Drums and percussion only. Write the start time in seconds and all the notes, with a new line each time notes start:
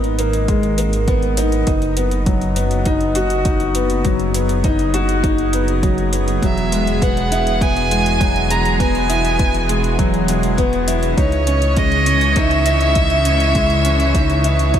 0.04 closed hi-hat
0.19 closed hi-hat
0.33 closed hi-hat
0.48 kick, closed hi-hat
0.63 closed hi-hat
0.78 closed hi-hat
0.93 closed hi-hat
1.08 kick, closed hi-hat
1.23 closed hi-hat
1.37 closed hi-hat
1.52 closed hi-hat
1.67 kick, closed hi-hat
1.82 closed hi-hat
1.97 closed hi-hat
2.11 closed hi-hat
2.26 kick, closed hi-hat
2.41 closed hi-hat
2.56 closed hi-hat
2.71 closed hi-hat
2.86 kick, closed hi-hat
3.01 closed hi-hat
3.15 closed hi-hat
3.30 closed hi-hat
3.45 kick, closed hi-hat
3.60 closed hi-hat
3.75 closed hi-hat
3.90 closed hi-hat
4.05 kick, closed hi-hat
4.19 closed hi-hat
4.34 closed hi-hat
4.49 closed hi-hat
4.64 kick, closed hi-hat
4.79 closed hi-hat
4.94 closed hi-hat
5.09 closed hi-hat
5.24 kick, closed hi-hat
5.38 closed hi-hat
5.53 closed hi-hat
5.68 closed hi-hat
5.83 kick, closed hi-hat
5.98 closed hi-hat
6.13 closed hi-hat
6.28 closed hi-hat
6.42 kick, closed hi-hat
6.58 closed hi-hat
6.72 closed hi-hat
6.87 closed hi-hat
7.02 kick, closed hi-hat
7.17 closed hi-hat
7.32 closed hi-hat
7.47 closed hi-hat
7.61 kick, closed hi-hat
7.76 closed hi-hat
7.91 closed hi-hat
8.06 closed hi-hat
8.21 kick, closed hi-hat
8.36 closed hi-hat
8.51 closed hi-hat
8.65 closed hi-hat
8.80 kick, closed hi-hat
8.95 closed hi-hat
9.10 closed hi-hat
9.25 closed hi-hat
9.39 kick, closed hi-hat
9.54 closed hi-hat
9.69 closed hi-hat
9.84 closed hi-hat
9.99 kick, closed hi-hat
10.14 closed hi-hat
10.28 closed hi-hat
10.43 closed hi-hat
10.58 kick, closed hi-hat
10.73 closed hi-hat
10.88 closed hi-hat
11.03 closed hi-hat
11.18 kick, closed hi-hat
11.32 closed hi-hat
11.47 closed hi-hat
11.62 closed hi-hat
11.77 kick, closed hi-hat
11.92 closed hi-hat
12.06 closed hi-hat
12.21 closed hi-hat
12.36 kick, closed hi-hat
12.51 closed hi-hat
12.66 closed hi-hat
12.81 closed hi-hat
12.95 kick, closed hi-hat
13.10 closed hi-hat
13.25 closed hi-hat
13.40 closed hi-hat
13.55 kick, closed hi-hat
13.70 closed hi-hat
13.85 closed hi-hat
14.00 closed hi-hat
14.15 kick, closed hi-hat
14.30 closed hi-hat
14.44 closed hi-hat
14.59 closed hi-hat
14.74 kick, closed hi-hat